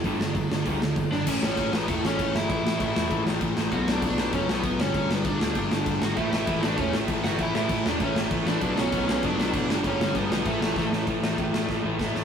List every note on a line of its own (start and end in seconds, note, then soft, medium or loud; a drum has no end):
0.04 0.17 G1 medium
0.04 0.19 G2 medium
0.04 0.19 D3 medium
0.04 0.19 G3 medium
0.04 1.11 B3 medium
0.04 1.10 D4 medium
0.04 kick medium
0.04 open hi-hat soft
0.20 0.33 G1 medium
0.20 0.34 G2 medium
0.20 0.34 D3 medium
0.20 snare loud
0.35 0.48 G1 loud
0.35 0.49 G2 medium
0.35 0.49 D3 medium
0.35 kick loud
0.35 open hi-hat medium
0.51 0.64 G1 medium
0.51 0.65 G2 medium
0.51 0.65 D3 medium
0.51 snare loud
0.65 0.91 D2 medium
0.65 0.80 G2 medium
0.65 0.81 D3 medium
0.65 0.81 G3 medium
0.65 kick loud
0.65 open hi-hat medium
0.82 0.95 G2 medium
0.82 0.95 D3 medium
0.82 snare loud
0.96 1.09 G1 medium
0.96 1.11 G2 medium
0.96 1.11 D3 medium
0.96 kick loud
0.96 open hi-hat medium
1.11 1.27 G1 medium
1.11 1.26 G2 medium
1.11 1.26 D3 medium
1.11 1.27 G3 medium
1.11 1.26 B3 medium
1.11 1.26 D4 medium
1.11 1.27 D5 medium
1.11 snare medium
1.27 1.40 A1 medium
1.27 1.43 A2 medium
1.27 1.43 E3 loud
1.27 1.42 A3 medium
1.27 1.42 C#4 medium
1.27 2.50 C#4 medium
1.27 2.50 E4 medium
1.27 1.42 C#5 medium
1.27 kick loud
1.27 crash loud
1.27 crash medium
1.43 1.56 A1 loud
1.43 1.57 A2 medium
1.43 1.57 E3 medium
1.43 1.58 A3 loud
1.43 1.71 C#4 medium
1.43 1.73 C#5 medium
1.43 snare loud
1.57 1.70 A1 loud
1.57 1.73 A2 loud
1.57 1.73 E3 loud
1.57 1.72 A3 loud
1.57 kick loud
1.57 crash medium
1.72 1.86 A1 medium
1.72 1.88 A2 medium
1.72 1.88 E3 medium
1.72 1.88 A3 medium
1.72 1.87 B3 medium
1.72 1.88 B4 medium
1.72 snare loud
1.87 2.01 E1 medium
1.87 2.03 A2 loud
1.87 2.03 E3 loud
1.87 2.02 A3 medium
1.87 2.02 A3 loud
1.87 2.02 A4 medium
1.87 kick loud
1.87 crash medium
2.03 2.17 A1 loud
2.03 2.17 A2 medium
2.03 2.18 E3 medium
2.03 2.18 A3 loud
2.03 2.33 C#4 medium
2.03 2.33 C#5 loud
2.03 snare loud
2.18 2.32 A1 medium
2.18 2.33 A2 loud
2.18 2.33 E3 loud
2.18 2.32 A3 loud
2.18 kick loud
2.18 crash medium
2.33 2.47 G1 medium
2.33 2.48 A2 medium
2.33 2.49 E3 medium
2.33 2.49 A3 loud
2.33 3.23 E4 medium
2.33 3.23 E5 loud
2.33 snare loud
2.49 2.63 A1 medium
2.49 2.65 A2 medium
2.49 2.64 E3 loud
2.49 2.64 A3 loud
2.49 3.72 C#4 medium
2.49 3.72 E4 loud
2.49 kick loud
2.49 crash medium
2.65 2.78 A1 medium
2.65 2.79 A2 medium
2.65 2.79 E3 medium
2.65 2.80 A3 medium
2.65 snare loud
2.80 2.93 A1 loud
2.80 2.95 A2 loud
2.80 2.95 E3 loud
2.80 2.95 A3 loud
2.80 kick loud
2.80 crash medium
2.96 3.09 E1 medium
2.96 3.09 A2 medium
2.96 3.10 E3 medium
2.96 3.10 A3 medium
2.96 snare loud
3.10 3.24 A1 loud
3.10 3.26 A2 loud
3.10 3.25 E3 loud
3.10 3.25 A3 loud
3.10 kick loud
3.10 crash medium
3.26 3.39 A1 medium
3.26 3.40 A2 medium
3.26 3.40 E3 medium
3.26 3.41 A3 loud
3.26 snare loud
3.41 3.54 A1 medium
3.41 3.57 A2 loud
3.41 3.57 E3 loud
3.41 3.56 A3 loud
3.41 kick loud
3.41 crash medium
3.57 3.70 A1 medium
3.57 3.72 A2 medium
3.57 3.72 E3 medium
3.57 3.71 A3 loud
3.57 snare loud
3.72 3.85 B1 medium
3.72 3.87 B2 medium
3.72 3.86 F#3 medium
3.72 3.87 B3 loud
3.72 4.80 D4 medium
3.72 3.87 F#4 medium
3.72 3.88 F#5 loud
3.72 kick medium
3.72 crash medium
3.86 4.00 B1 medium
3.86 4.01 B2 medium
3.86 4.01 F#3 loud
3.86 4.02 B3 loud
3.86 4.03 D4 medium
3.86 snare loud
3.91 4.04 D5 loud
4.02 4.15 B1 loud
4.02 4.18 B2 loud
4.02 4.17 F#3 loud
4.02 4.17 B3 loud
4.02 4.32 D4 medium
4.02 4.34 D5 loud
4.02 kick loud
4.02 crash medium
4.17 4.30 B1 medium
4.17 4.32 B2 medium
4.17 4.33 F#3 medium
4.17 4.33 B3 medium
4.17 snare loud
4.33 4.46 F#1 medium
4.33 4.49 B2 loud
4.33 4.49 F#3 loud
4.33 4.48 B3 loud
4.33 4.48 C#4 medium
4.33 4.50 C#5 loud
4.33 kick loud
4.33 crash medium
4.48 4.61 B1 loud
4.48 4.63 B2 medium
4.48 4.63 F#3 medium
4.48 4.64 B3 loud
4.48 4.78 B3 medium
4.48 4.80 B4 medium
4.48 snare loud
4.63 4.77 B1 medium
4.63 4.79 B2 loud
4.63 4.79 F#3 loud
4.63 4.79 B3 loud
4.63 kick loud
4.63 crash medium
4.79 4.92 G1 loud
4.79 4.95 G2 medium
4.79 4.94 D3 loud
4.79 4.93 G3 loud
4.79 6.02 B3 loud
4.79 5.08 C#4 medium
4.79 6.02 D4 loud
4.79 5.11 C#5 medium
4.79 snare loud
4.94 5.07 G1 medium
4.94 5.09 G2 loud
4.94 5.10 D3 medium
4.94 5.11 G3 loud
4.94 kick loud
4.94 crash medium
5.09 5.22 G1 loud
5.09 5.26 G2 medium
5.09 5.25 D3 medium
5.09 5.25 G3 loud
5.09 5.25 B3 medium
5.09 5.27 B4 medium
5.09 snare loud
5.24 5.38 G1 loud
5.24 5.39 G2 loud
5.24 5.39 D3 loud
5.24 5.40 G3 loud
5.24 5.99 D4 medium
5.24 6.03 D5 medium
5.24 kick loud
5.24 crash medium
5.40 5.53 D2 medium
5.40 5.56 G2 medium
5.40 5.55 D3 medium
5.40 5.55 G3 medium
5.40 snare loud
5.55 5.68 G1 medium
5.55 5.70 G2 loud
5.55 5.71 D3 loud
5.55 5.71 G3 loud
5.55 kick loud
5.55 crash medium
5.71 5.85 G1 loud
5.71 5.87 G2 medium
5.71 5.86 D3 loud
5.71 5.86 G3 loud
5.71 snare loud
5.86 5.99 G1 medium
5.86 6.02 G2 medium
5.86 6.02 D3 loud
5.86 6.03 G3 loud
5.86 kick loud
5.86 crash medium
6.01 6.14 G#1 medium
6.01 6.17 G2 medium
6.01 6.17 D3 medium
6.01 6.17 G3 loud
6.01 6.17 F#4 medium
6.01 6.17 F#5 loud
6.01 snare loud
6.17 6.30 A1 medium
6.17 6.34 A2 medium
6.17 6.33 E3 loud
6.17 6.33 A3 loud
6.17 7.40 C#4 medium
6.17 6.31 E4 medium
6.17 7.40 E4 loud
6.17 6.30 E5 loud
6.17 kick loud
6.17 crash medium
6.32 6.45 A1 medium
6.32 6.48 A2 medium
6.32 6.48 E3 medium
6.32 6.49 A3 medium
6.32 6.61 E4 medium
6.32 6.60 E5 loud
6.32 snare loud
6.47 6.60 A1 loud
6.47 6.64 A2 loud
6.47 6.64 E3 loud
6.47 6.63 A3 loud
6.47 kick loud
6.47 crash medium
6.62 6.75 A1 medium
6.62 6.76 A2 medium
6.62 6.77 E3 medium
6.62 6.77 A3 medium
6.62 6.78 D4 medium
6.62 6.79 D5 medium
6.62 snare loud
6.77 6.91 E1 loud
6.77 6.94 A2 loud
6.77 6.93 E3 loud
6.77 6.92 A3 loud
6.77 6.93 C#4 medium
6.77 6.93 C#5 medium
6.77 kick loud
6.77 crash medium
6.92 7.06 A1 loud
6.92 7.08 A2 medium
6.92 7.09 E3 medium
6.92 7.10 A3 medium
6.92 snare loud
7.08 7.21 A1 medium
7.08 7.25 A2 loud
7.08 7.24 E3 loud
7.08 7.24 A3 loud
7.08 kick loud
7.08 crash medium
7.24 7.37 G1 medium
7.24 7.39 A2 medium
7.24 7.39 E3 medium
7.24 7.40 A3 loud
7.24 7.39 F#4 medium
7.24 7.40 F#5 loud
7.24 snare loud
7.38 7.52 A1 medium
7.38 7.55 A2 medium
7.38 7.54 E3 medium
7.38 7.54 A3 loud
7.38 8.62 C#4 loud
7.38 7.55 E4 medium
7.38 7.54 E5 loud
7.38 kick loud
7.38 crash medium
7.43 8.63 E4 medium
7.54 7.67 A1 medium
7.54 7.69 A2 medium
7.54 7.70 E3 medium
7.54 7.70 A3 medium
7.54 7.84 E4 medium
7.54 7.83 E5 loud
7.54 snare loud
7.69 7.83 A1 loud
7.69 7.85 A2 loud
7.69 7.85 E3 loud
7.69 7.84 A3 loud
7.69 kick loud
7.69 crash medium
7.85 7.98 E1 medium
7.85 7.99 A2 medium
7.85 8.00 E3 medium
7.85 8.00 A3 medium
7.85 8.01 D4 medium
7.85 8.02 D5 medium
7.85 snare loud
8.00 8.13 A1 loud
8.00 8.16 A2 loud
8.00 8.15 E3 loud
8.00 8.15 A3 loud
8.00 8.16 C#4 medium
8.00 8.16 C#5 medium
8.00 kick loud
8.00 crash medium
8.16 8.29 A1 loud
8.16 8.30 A2 medium
8.16 8.31 E3 medium
8.16 8.31 A3 medium
8.16 snare loud
8.31 8.44 A1 medium
8.31 8.47 A2 loud
8.31 8.46 E3 loud
8.31 8.46 A3 loud
8.31 kick loud
8.31 crash medium
8.46 8.59 A1 medium
8.46 8.62 A2 medium
8.46 8.61 E3 medium
8.46 8.61 A3 loud
8.46 8.76 D4 medium
8.46 8.79 D5 loud
8.46 snare loud
8.61 8.74 B1 medium
8.61 8.77 B2 medium
8.61 8.76 F#3 medium
8.61 8.75 B3 loud
8.61 9.69 D4 medium
8.61 kick loud
8.61 crash medium
8.76 8.90 B1 loud
8.76 8.90 B2 medium
8.76 8.91 F#3 medium
8.76 8.92 B3 medium
8.76 9.07 C#4 medium
8.76 9.09 C#5 medium
8.76 snare loud
8.92 9.05 B1 loud
8.92 9.07 B2 loud
8.92 9.07 F#3 loud
8.92 9.06 B3 loud
8.92 kick loud
8.92 crash medium
9.07 9.20 B1 medium
9.07 9.22 B2 medium
9.07 9.23 F#3 medium
9.07 9.23 B3 medium
9.07 9.23 C#4 medium
9.07 9.23 C#5 medium
9.07 snare loud
9.23 9.36 F#1 loud
9.23 9.38 B2 loud
9.23 9.38 F#3 loud
9.23 9.37 B3 loud
9.23 9.67 D4 medium
9.23 9.67 D5 loud
9.23 kick loud
9.23 crash medium
9.37 9.50 B1 medium
9.37 9.52 B2 medium
9.37 9.52 F#3 medium
9.37 9.53 B3 loud
9.37 snare loud
9.53 9.67 B1 medium
9.53 9.68 B2 loud
9.53 9.68 F#3 loud
9.53 9.69 B3 loud
9.53 kick loud
9.53 crash medium
9.68 9.82 G1 loud
9.68 9.84 G2 loud
9.68 9.83 D3 loud
9.68 9.82 G3 loud
9.68 10.46 B3 loud
9.68 9.76 D4 medium
9.68 9.76 D5 medium
9.68 snare loud
9.72 10.47 D4 loud
9.84 9.97 G1 medium
9.84 9.99 G2 medium
9.84 9.99 D3 loud
9.84 10.00 G3 loud
9.84 10.14 C#4 medium
9.84 10.16 C#5 loud
9.84 kick loud
9.84 crash medium
9.99 10.12 G1 loud
9.99 10.15 G2 medium
9.99 10.15 D3 medium
9.99 10.14 G3 loud
9.99 snare loud
10.15 10.28 G1 loud
10.15 10.29 G2 loud
10.15 10.30 D3 loud
10.15 10.31 G3 loud
10.15 10.44 B3 medium
10.15 10.47 B4 medium
10.15 kick loud
10.15 crash medium
10.30 10.43 B1 medium
10.30 10.45 G2 medium
10.30 10.45 D3 medium
10.30 10.46 G3 medium
10.30 snare loud
10.46 10.59 A1 loud
10.46 10.61 A2 loud
10.46 10.60 E3 loud
10.46 10.89 A3 medium
10.46 10.59 A3 loud
10.46 11.08 C#4 loud
10.46 11.08 E4 loud
10.46 10.89 A4 medium
10.46 kick loud
10.46 crash medium
10.60 10.74 A1 loud
10.60 10.76 A2 medium
10.60 10.76 E3 loud
10.60 10.77 A3 medium
10.60 snare loud
10.76 10.89 A1 medium
10.76 10.92 A2 loud
10.76 10.91 E3 loud
10.76 10.91 A3 loud
10.76 kick loud
10.76 snare medium
10.92 11.05 A1 loud
10.92 11.07 A2 medium
10.92 11.07 E3 medium
10.92 11.07 A3 medium
10.92 snare medium
11.07 11.19 A1 medium
11.07 11.24 A2 medium
11.07 11.23 E3 medium
11.07 11.22 A3 medium
11.07 kick loud
11.07 crash soft
11.22 11.33 A1 medium
11.22 11.37 A2 medium
11.22 11.38 E3 medium
11.22 11.38 A3 medium
11.22 snare loud
11.38 11.49 A1 loud
11.38 11.53 A2 loud
11.38 11.53 E3 loud
11.38 11.52 A3 loud
11.38 kick loud
11.38 crash medium
11.53 11.65 A1 medium
11.53 11.68 A2 medium
11.53 11.69 E3 medium
11.53 11.69 A3 medium
11.53 snare loud
11.68 11.80 A1 medium
11.68 11.85 A2 medium
11.68 11.84 E3 loud
11.68 11.84 A3 loud
11.68 kick loud
11.68 snare medium
11.84 11.96 A1 medium
11.84 11.99 A2 medium
11.84 12.00 E3 medium
11.84 12.00 A3 loud
11.99 12.11 A1 medium
11.99 12.15 A2 loud
11.99 12.15 E3 medium
11.99 12.14 A3 loud
11.99 kick loud
11.99 snare medium
12.15 12.24 A1 medium
12.15 12.24 A2 medium
12.15 12.24 E3 medium
12.15 12.24 A3 medium
12.15 snare medium